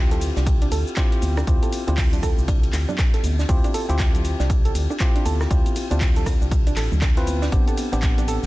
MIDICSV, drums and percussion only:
0, 0, Header, 1, 2, 480
1, 0, Start_track
1, 0, Tempo, 504202
1, 1402, Time_signature, 4, 2, 24, 8
1, 8057, End_track
2, 0, Start_track
2, 0, Title_t, "Drums"
2, 108, Note_on_c, 9, 42, 56
2, 108, Note_on_c, 9, 60, 84
2, 108, Note_on_c, 9, 64, 87
2, 111, Note_on_c, 9, 69, 32
2, 202, Note_on_c, 9, 51, 71
2, 203, Note_off_c, 9, 60, 0
2, 203, Note_off_c, 9, 64, 0
2, 203, Note_on_c, 9, 46, 92
2, 204, Note_off_c, 9, 42, 0
2, 206, Note_off_c, 9, 69, 0
2, 206, Note_on_c, 9, 69, 80
2, 297, Note_off_c, 9, 51, 0
2, 299, Note_off_c, 9, 46, 0
2, 302, Note_off_c, 9, 69, 0
2, 344, Note_on_c, 9, 38, 36
2, 352, Note_on_c, 9, 69, 34
2, 439, Note_off_c, 9, 38, 0
2, 442, Note_on_c, 9, 36, 118
2, 443, Note_on_c, 9, 42, 85
2, 443, Note_on_c, 9, 60, 58
2, 444, Note_on_c, 9, 51, 90
2, 447, Note_off_c, 9, 69, 0
2, 447, Note_on_c, 9, 69, 45
2, 537, Note_off_c, 9, 36, 0
2, 538, Note_off_c, 9, 60, 0
2, 539, Note_off_c, 9, 42, 0
2, 539, Note_off_c, 9, 51, 0
2, 542, Note_off_c, 9, 69, 0
2, 588, Note_on_c, 9, 42, 57
2, 683, Note_off_c, 9, 42, 0
2, 683, Note_on_c, 9, 46, 107
2, 686, Note_on_c, 9, 51, 62
2, 686, Note_on_c, 9, 69, 80
2, 778, Note_off_c, 9, 46, 0
2, 781, Note_off_c, 9, 51, 0
2, 781, Note_off_c, 9, 69, 0
2, 831, Note_on_c, 9, 69, 34
2, 920, Note_on_c, 9, 38, 123
2, 922, Note_on_c, 9, 36, 121
2, 922, Note_on_c, 9, 51, 92
2, 923, Note_on_c, 9, 39, 127
2, 923, Note_on_c, 9, 42, 89
2, 923, Note_on_c, 9, 60, 85
2, 926, Note_off_c, 9, 69, 0
2, 926, Note_on_c, 9, 69, 46
2, 1015, Note_off_c, 9, 38, 0
2, 1017, Note_off_c, 9, 36, 0
2, 1017, Note_off_c, 9, 51, 0
2, 1018, Note_off_c, 9, 39, 0
2, 1018, Note_off_c, 9, 42, 0
2, 1018, Note_off_c, 9, 60, 0
2, 1021, Note_off_c, 9, 69, 0
2, 1068, Note_on_c, 9, 42, 58
2, 1161, Note_on_c, 9, 51, 66
2, 1162, Note_on_c, 9, 46, 96
2, 1163, Note_off_c, 9, 42, 0
2, 1163, Note_on_c, 9, 63, 84
2, 1165, Note_on_c, 9, 69, 77
2, 1257, Note_off_c, 9, 46, 0
2, 1257, Note_off_c, 9, 51, 0
2, 1258, Note_off_c, 9, 63, 0
2, 1261, Note_off_c, 9, 69, 0
2, 1305, Note_on_c, 9, 38, 58
2, 1308, Note_on_c, 9, 37, 82
2, 1309, Note_on_c, 9, 60, 57
2, 1311, Note_on_c, 9, 69, 36
2, 1400, Note_off_c, 9, 38, 0
2, 1401, Note_on_c, 9, 51, 88
2, 1402, Note_on_c, 9, 36, 124
2, 1403, Note_off_c, 9, 37, 0
2, 1403, Note_on_c, 9, 42, 81
2, 1404, Note_off_c, 9, 60, 0
2, 1406, Note_off_c, 9, 69, 0
2, 1406, Note_on_c, 9, 69, 45
2, 1496, Note_off_c, 9, 51, 0
2, 1497, Note_off_c, 9, 36, 0
2, 1498, Note_off_c, 9, 42, 0
2, 1501, Note_off_c, 9, 69, 0
2, 1548, Note_on_c, 9, 42, 52
2, 1549, Note_on_c, 9, 63, 69
2, 1551, Note_on_c, 9, 69, 29
2, 1637, Note_on_c, 9, 51, 64
2, 1642, Note_on_c, 9, 46, 110
2, 1643, Note_off_c, 9, 42, 0
2, 1644, Note_off_c, 9, 63, 0
2, 1646, Note_off_c, 9, 69, 0
2, 1646, Note_on_c, 9, 69, 74
2, 1732, Note_off_c, 9, 51, 0
2, 1738, Note_off_c, 9, 46, 0
2, 1741, Note_off_c, 9, 69, 0
2, 1788, Note_on_c, 9, 42, 38
2, 1788, Note_on_c, 9, 60, 81
2, 1788, Note_on_c, 9, 63, 65
2, 1791, Note_on_c, 9, 69, 33
2, 1881, Note_on_c, 9, 38, 126
2, 1882, Note_off_c, 9, 42, 0
2, 1882, Note_on_c, 9, 36, 123
2, 1882, Note_on_c, 9, 39, 127
2, 1882, Note_on_c, 9, 42, 84
2, 1883, Note_off_c, 9, 60, 0
2, 1883, Note_off_c, 9, 63, 0
2, 1883, Note_on_c, 9, 46, 91
2, 1886, Note_off_c, 9, 69, 0
2, 1886, Note_on_c, 9, 69, 47
2, 1976, Note_off_c, 9, 38, 0
2, 1977, Note_off_c, 9, 36, 0
2, 1977, Note_off_c, 9, 39, 0
2, 1978, Note_off_c, 9, 42, 0
2, 1978, Note_off_c, 9, 46, 0
2, 1981, Note_off_c, 9, 69, 0
2, 2027, Note_on_c, 9, 51, 44
2, 2028, Note_on_c, 9, 42, 53
2, 2029, Note_on_c, 9, 64, 87
2, 2031, Note_on_c, 9, 69, 30
2, 2122, Note_off_c, 9, 51, 0
2, 2122, Note_on_c, 9, 36, 61
2, 2123, Note_off_c, 9, 42, 0
2, 2123, Note_on_c, 9, 37, 64
2, 2123, Note_on_c, 9, 46, 100
2, 2123, Note_on_c, 9, 60, 55
2, 2124, Note_off_c, 9, 64, 0
2, 2126, Note_off_c, 9, 69, 0
2, 2126, Note_on_c, 9, 51, 66
2, 2126, Note_on_c, 9, 69, 77
2, 2217, Note_off_c, 9, 36, 0
2, 2218, Note_off_c, 9, 37, 0
2, 2218, Note_off_c, 9, 46, 0
2, 2218, Note_off_c, 9, 60, 0
2, 2221, Note_off_c, 9, 51, 0
2, 2221, Note_off_c, 9, 69, 0
2, 2271, Note_on_c, 9, 69, 33
2, 2358, Note_on_c, 9, 51, 94
2, 2362, Note_on_c, 9, 36, 124
2, 2363, Note_on_c, 9, 42, 82
2, 2366, Note_off_c, 9, 69, 0
2, 2366, Note_on_c, 9, 69, 42
2, 2453, Note_off_c, 9, 51, 0
2, 2457, Note_off_c, 9, 36, 0
2, 2458, Note_off_c, 9, 42, 0
2, 2461, Note_off_c, 9, 69, 0
2, 2508, Note_on_c, 9, 42, 56
2, 2602, Note_on_c, 9, 39, 66
2, 2602, Note_on_c, 9, 46, 109
2, 2603, Note_off_c, 9, 42, 0
2, 2604, Note_on_c, 9, 60, 82
2, 2606, Note_on_c, 9, 69, 79
2, 2608, Note_on_c, 9, 51, 63
2, 2697, Note_off_c, 9, 39, 0
2, 2698, Note_off_c, 9, 46, 0
2, 2699, Note_off_c, 9, 60, 0
2, 2701, Note_off_c, 9, 69, 0
2, 2703, Note_off_c, 9, 51, 0
2, 2745, Note_on_c, 9, 51, 45
2, 2749, Note_on_c, 9, 63, 65
2, 2749, Note_on_c, 9, 64, 103
2, 2751, Note_on_c, 9, 69, 34
2, 2840, Note_off_c, 9, 51, 0
2, 2842, Note_on_c, 9, 36, 127
2, 2842, Note_on_c, 9, 39, 127
2, 2843, Note_on_c, 9, 37, 62
2, 2843, Note_on_c, 9, 42, 85
2, 2843, Note_on_c, 9, 51, 90
2, 2844, Note_off_c, 9, 63, 0
2, 2844, Note_off_c, 9, 64, 0
2, 2845, Note_on_c, 9, 38, 110
2, 2846, Note_off_c, 9, 69, 0
2, 2846, Note_on_c, 9, 69, 45
2, 2937, Note_off_c, 9, 36, 0
2, 2938, Note_off_c, 9, 37, 0
2, 2938, Note_off_c, 9, 39, 0
2, 2938, Note_off_c, 9, 42, 0
2, 2939, Note_off_c, 9, 51, 0
2, 2940, Note_off_c, 9, 38, 0
2, 2941, Note_off_c, 9, 69, 0
2, 2988, Note_on_c, 9, 42, 56
2, 2989, Note_on_c, 9, 60, 52
2, 2992, Note_on_c, 9, 38, 34
2, 3082, Note_on_c, 9, 46, 96
2, 3083, Note_off_c, 9, 42, 0
2, 3084, Note_off_c, 9, 60, 0
2, 3084, Note_on_c, 9, 51, 71
2, 3084, Note_on_c, 9, 63, 89
2, 3085, Note_on_c, 9, 69, 77
2, 3088, Note_off_c, 9, 38, 0
2, 3177, Note_off_c, 9, 46, 0
2, 3179, Note_off_c, 9, 51, 0
2, 3179, Note_off_c, 9, 63, 0
2, 3181, Note_off_c, 9, 69, 0
2, 3231, Note_on_c, 9, 69, 33
2, 3235, Note_on_c, 9, 38, 48
2, 3318, Note_on_c, 9, 51, 95
2, 3322, Note_on_c, 9, 36, 127
2, 3323, Note_on_c, 9, 42, 81
2, 3326, Note_off_c, 9, 69, 0
2, 3326, Note_on_c, 9, 69, 43
2, 3330, Note_off_c, 9, 38, 0
2, 3413, Note_off_c, 9, 51, 0
2, 3417, Note_off_c, 9, 36, 0
2, 3418, Note_off_c, 9, 42, 0
2, 3421, Note_off_c, 9, 69, 0
2, 3468, Note_on_c, 9, 42, 51
2, 3468, Note_on_c, 9, 60, 77
2, 3468, Note_on_c, 9, 63, 69
2, 3471, Note_on_c, 9, 69, 30
2, 3559, Note_on_c, 9, 51, 73
2, 3563, Note_off_c, 9, 42, 0
2, 3563, Note_on_c, 9, 46, 113
2, 3564, Note_off_c, 9, 60, 0
2, 3564, Note_off_c, 9, 63, 0
2, 3566, Note_off_c, 9, 69, 0
2, 3566, Note_on_c, 9, 69, 74
2, 3655, Note_off_c, 9, 51, 0
2, 3658, Note_off_c, 9, 46, 0
2, 3661, Note_off_c, 9, 69, 0
2, 3708, Note_on_c, 9, 42, 36
2, 3711, Note_on_c, 9, 51, 42
2, 3711, Note_on_c, 9, 69, 31
2, 3801, Note_on_c, 9, 38, 120
2, 3802, Note_off_c, 9, 51, 0
2, 3802, Note_on_c, 9, 36, 127
2, 3802, Note_on_c, 9, 51, 97
2, 3803, Note_off_c, 9, 42, 0
2, 3803, Note_on_c, 9, 39, 127
2, 3803, Note_on_c, 9, 42, 81
2, 3803, Note_on_c, 9, 60, 53
2, 3806, Note_off_c, 9, 69, 0
2, 3806, Note_on_c, 9, 69, 44
2, 3896, Note_off_c, 9, 38, 0
2, 3897, Note_off_c, 9, 36, 0
2, 3897, Note_off_c, 9, 51, 0
2, 3898, Note_off_c, 9, 39, 0
2, 3898, Note_off_c, 9, 60, 0
2, 3899, Note_off_c, 9, 42, 0
2, 3902, Note_off_c, 9, 69, 0
2, 3948, Note_on_c, 9, 42, 52
2, 3948, Note_on_c, 9, 64, 85
2, 3951, Note_on_c, 9, 69, 30
2, 4041, Note_on_c, 9, 51, 65
2, 4043, Note_on_c, 9, 46, 99
2, 4044, Note_off_c, 9, 42, 0
2, 4044, Note_off_c, 9, 64, 0
2, 4046, Note_off_c, 9, 69, 0
2, 4046, Note_on_c, 9, 69, 76
2, 4137, Note_off_c, 9, 51, 0
2, 4138, Note_off_c, 9, 46, 0
2, 4141, Note_off_c, 9, 69, 0
2, 4186, Note_on_c, 9, 38, 39
2, 4191, Note_on_c, 9, 69, 33
2, 4280, Note_on_c, 9, 51, 88
2, 4281, Note_off_c, 9, 38, 0
2, 4282, Note_on_c, 9, 36, 126
2, 4283, Note_on_c, 9, 42, 78
2, 4283, Note_on_c, 9, 60, 79
2, 4286, Note_off_c, 9, 69, 0
2, 4286, Note_on_c, 9, 69, 44
2, 4375, Note_off_c, 9, 51, 0
2, 4377, Note_off_c, 9, 36, 0
2, 4378, Note_off_c, 9, 42, 0
2, 4378, Note_off_c, 9, 60, 0
2, 4381, Note_off_c, 9, 69, 0
2, 4428, Note_on_c, 9, 42, 54
2, 4523, Note_on_c, 9, 46, 111
2, 4524, Note_off_c, 9, 42, 0
2, 4526, Note_on_c, 9, 69, 75
2, 4527, Note_on_c, 9, 51, 65
2, 4618, Note_off_c, 9, 46, 0
2, 4621, Note_off_c, 9, 69, 0
2, 4622, Note_off_c, 9, 51, 0
2, 4668, Note_on_c, 9, 60, 55
2, 4672, Note_on_c, 9, 69, 33
2, 4760, Note_on_c, 9, 38, 114
2, 4762, Note_on_c, 9, 36, 127
2, 4763, Note_on_c, 9, 39, 127
2, 4763, Note_on_c, 9, 42, 83
2, 4764, Note_off_c, 9, 60, 0
2, 4764, Note_on_c, 9, 51, 83
2, 4766, Note_off_c, 9, 69, 0
2, 4766, Note_on_c, 9, 69, 45
2, 4856, Note_off_c, 9, 38, 0
2, 4857, Note_off_c, 9, 36, 0
2, 4858, Note_off_c, 9, 39, 0
2, 4858, Note_off_c, 9, 42, 0
2, 4859, Note_off_c, 9, 51, 0
2, 4861, Note_off_c, 9, 69, 0
2, 4909, Note_on_c, 9, 42, 54
2, 5002, Note_on_c, 9, 51, 61
2, 5002, Note_on_c, 9, 63, 89
2, 5003, Note_on_c, 9, 46, 98
2, 5004, Note_off_c, 9, 42, 0
2, 5006, Note_on_c, 9, 69, 76
2, 5098, Note_off_c, 9, 46, 0
2, 5098, Note_off_c, 9, 51, 0
2, 5098, Note_off_c, 9, 63, 0
2, 5102, Note_off_c, 9, 69, 0
2, 5147, Note_on_c, 9, 60, 76
2, 5148, Note_on_c, 9, 37, 84
2, 5151, Note_on_c, 9, 38, 51
2, 5151, Note_on_c, 9, 69, 34
2, 5236, Note_on_c, 9, 51, 85
2, 5241, Note_on_c, 9, 36, 124
2, 5242, Note_off_c, 9, 60, 0
2, 5243, Note_off_c, 9, 37, 0
2, 5243, Note_on_c, 9, 42, 75
2, 5246, Note_off_c, 9, 38, 0
2, 5246, Note_off_c, 9, 69, 0
2, 5246, Note_on_c, 9, 69, 44
2, 5332, Note_off_c, 9, 51, 0
2, 5337, Note_off_c, 9, 36, 0
2, 5338, Note_off_c, 9, 42, 0
2, 5341, Note_off_c, 9, 69, 0
2, 5388, Note_on_c, 9, 42, 51
2, 5388, Note_on_c, 9, 63, 72
2, 5391, Note_on_c, 9, 69, 30
2, 5482, Note_on_c, 9, 51, 75
2, 5483, Note_off_c, 9, 42, 0
2, 5483, Note_off_c, 9, 63, 0
2, 5483, Note_on_c, 9, 46, 110
2, 5484, Note_on_c, 9, 60, 51
2, 5486, Note_off_c, 9, 69, 0
2, 5486, Note_on_c, 9, 69, 77
2, 5578, Note_off_c, 9, 46, 0
2, 5578, Note_off_c, 9, 51, 0
2, 5579, Note_off_c, 9, 60, 0
2, 5581, Note_off_c, 9, 69, 0
2, 5627, Note_on_c, 9, 42, 35
2, 5628, Note_on_c, 9, 63, 66
2, 5631, Note_on_c, 9, 69, 32
2, 5719, Note_on_c, 9, 38, 115
2, 5721, Note_on_c, 9, 36, 123
2, 5722, Note_off_c, 9, 42, 0
2, 5722, Note_on_c, 9, 39, 124
2, 5722, Note_on_c, 9, 42, 81
2, 5723, Note_off_c, 9, 63, 0
2, 5724, Note_on_c, 9, 46, 82
2, 5726, Note_off_c, 9, 69, 0
2, 5726, Note_on_c, 9, 69, 44
2, 5814, Note_off_c, 9, 38, 0
2, 5817, Note_off_c, 9, 36, 0
2, 5817, Note_off_c, 9, 39, 0
2, 5818, Note_off_c, 9, 42, 0
2, 5820, Note_off_c, 9, 46, 0
2, 5821, Note_off_c, 9, 69, 0
2, 5868, Note_on_c, 9, 42, 52
2, 5868, Note_on_c, 9, 64, 81
2, 5869, Note_on_c, 9, 51, 44
2, 5871, Note_on_c, 9, 69, 30
2, 5960, Note_off_c, 9, 51, 0
2, 5960, Note_on_c, 9, 51, 65
2, 5961, Note_on_c, 9, 36, 65
2, 5962, Note_on_c, 9, 60, 79
2, 5963, Note_off_c, 9, 42, 0
2, 5963, Note_off_c, 9, 64, 0
2, 5963, Note_on_c, 9, 37, 69
2, 5963, Note_on_c, 9, 46, 98
2, 5966, Note_off_c, 9, 69, 0
2, 5966, Note_on_c, 9, 69, 78
2, 6056, Note_off_c, 9, 51, 0
2, 6057, Note_off_c, 9, 36, 0
2, 6058, Note_off_c, 9, 37, 0
2, 6058, Note_off_c, 9, 46, 0
2, 6058, Note_off_c, 9, 60, 0
2, 6061, Note_off_c, 9, 69, 0
2, 6111, Note_on_c, 9, 69, 34
2, 6198, Note_on_c, 9, 51, 96
2, 6202, Note_on_c, 9, 36, 125
2, 6202, Note_on_c, 9, 42, 77
2, 6206, Note_off_c, 9, 69, 0
2, 6206, Note_on_c, 9, 69, 44
2, 6293, Note_off_c, 9, 51, 0
2, 6297, Note_off_c, 9, 36, 0
2, 6298, Note_off_c, 9, 42, 0
2, 6301, Note_off_c, 9, 69, 0
2, 6348, Note_on_c, 9, 42, 54
2, 6348, Note_on_c, 9, 60, 52
2, 6351, Note_on_c, 9, 69, 31
2, 6440, Note_on_c, 9, 51, 73
2, 6442, Note_on_c, 9, 39, 61
2, 6443, Note_off_c, 9, 42, 0
2, 6443, Note_off_c, 9, 60, 0
2, 6443, Note_on_c, 9, 46, 112
2, 6446, Note_off_c, 9, 69, 0
2, 6446, Note_on_c, 9, 69, 78
2, 6535, Note_off_c, 9, 51, 0
2, 6538, Note_off_c, 9, 39, 0
2, 6538, Note_off_c, 9, 46, 0
2, 6541, Note_off_c, 9, 69, 0
2, 6588, Note_on_c, 9, 51, 44
2, 6588, Note_on_c, 9, 63, 67
2, 6588, Note_on_c, 9, 64, 95
2, 6591, Note_on_c, 9, 69, 34
2, 6681, Note_on_c, 9, 36, 124
2, 6682, Note_off_c, 9, 51, 0
2, 6682, Note_on_c, 9, 37, 65
2, 6682, Note_on_c, 9, 38, 114
2, 6682, Note_on_c, 9, 39, 120
2, 6682, Note_on_c, 9, 42, 80
2, 6682, Note_on_c, 9, 51, 91
2, 6683, Note_off_c, 9, 63, 0
2, 6683, Note_off_c, 9, 64, 0
2, 6685, Note_off_c, 9, 69, 0
2, 6685, Note_on_c, 9, 69, 44
2, 6777, Note_off_c, 9, 36, 0
2, 6777, Note_off_c, 9, 37, 0
2, 6777, Note_off_c, 9, 38, 0
2, 6777, Note_off_c, 9, 39, 0
2, 6777, Note_off_c, 9, 42, 0
2, 6778, Note_off_c, 9, 51, 0
2, 6780, Note_off_c, 9, 69, 0
2, 6827, Note_on_c, 9, 42, 52
2, 6827, Note_on_c, 9, 60, 75
2, 6834, Note_on_c, 9, 38, 34
2, 6921, Note_on_c, 9, 51, 74
2, 6922, Note_off_c, 9, 42, 0
2, 6922, Note_off_c, 9, 60, 0
2, 6922, Note_on_c, 9, 46, 96
2, 6922, Note_on_c, 9, 63, 89
2, 6925, Note_on_c, 9, 69, 80
2, 6929, Note_off_c, 9, 38, 0
2, 7016, Note_off_c, 9, 51, 0
2, 7017, Note_off_c, 9, 46, 0
2, 7017, Note_off_c, 9, 63, 0
2, 7020, Note_off_c, 9, 69, 0
2, 7063, Note_on_c, 9, 38, 47
2, 7070, Note_on_c, 9, 69, 36
2, 7157, Note_on_c, 9, 51, 86
2, 7159, Note_off_c, 9, 38, 0
2, 7161, Note_on_c, 9, 36, 122
2, 7162, Note_on_c, 9, 42, 77
2, 7165, Note_off_c, 9, 69, 0
2, 7165, Note_on_c, 9, 69, 45
2, 7253, Note_off_c, 9, 51, 0
2, 7256, Note_off_c, 9, 36, 0
2, 7257, Note_off_c, 9, 42, 0
2, 7260, Note_off_c, 9, 69, 0
2, 7307, Note_on_c, 9, 42, 50
2, 7307, Note_on_c, 9, 60, 51
2, 7307, Note_on_c, 9, 63, 68
2, 7310, Note_on_c, 9, 69, 30
2, 7398, Note_on_c, 9, 51, 73
2, 7402, Note_off_c, 9, 42, 0
2, 7402, Note_off_c, 9, 60, 0
2, 7402, Note_off_c, 9, 63, 0
2, 7402, Note_on_c, 9, 46, 102
2, 7405, Note_off_c, 9, 69, 0
2, 7405, Note_on_c, 9, 69, 78
2, 7493, Note_off_c, 9, 51, 0
2, 7497, Note_off_c, 9, 46, 0
2, 7500, Note_off_c, 9, 69, 0
2, 7544, Note_on_c, 9, 51, 46
2, 7548, Note_on_c, 9, 42, 37
2, 7551, Note_on_c, 9, 69, 34
2, 7639, Note_off_c, 9, 51, 0
2, 7641, Note_on_c, 9, 36, 120
2, 7642, Note_off_c, 9, 42, 0
2, 7642, Note_on_c, 9, 38, 121
2, 7642, Note_on_c, 9, 39, 118
2, 7642, Note_on_c, 9, 42, 81
2, 7643, Note_on_c, 9, 51, 91
2, 7645, Note_off_c, 9, 69, 0
2, 7645, Note_on_c, 9, 69, 46
2, 7737, Note_off_c, 9, 36, 0
2, 7737, Note_off_c, 9, 38, 0
2, 7737, Note_off_c, 9, 39, 0
2, 7737, Note_off_c, 9, 42, 0
2, 7738, Note_off_c, 9, 51, 0
2, 7741, Note_off_c, 9, 69, 0
2, 7787, Note_on_c, 9, 60, 78
2, 7787, Note_on_c, 9, 64, 78
2, 7788, Note_on_c, 9, 42, 52
2, 7791, Note_on_c, 9, 69, 32
2, 7877, Note_on_c, 9, 51, 65
2, 7882, Note_off_c, 9, 60, 0
2, 7882, Note_off_c, 9, 64, 0
2, 7882, Note_on_c, 9, 46, 96
2, 7883, Note_off_c, 9, 42, 0
2, 7885, Note_off_c, 9, 69, 0
2, 7885, Note_on_c, 9, 69, 83
2, 7972, Note_off_c, 9, 51, 0
2, 7977, Note_off_c, 9, 46, 0
2, 7980, Note_off_c, 9, 69, 0
2, 8028, Note_on_c, 9, 38, 39
2, 8057, Note_off_c, 9, 38, 0
2, 8057, End_track
0, 0, End_of_file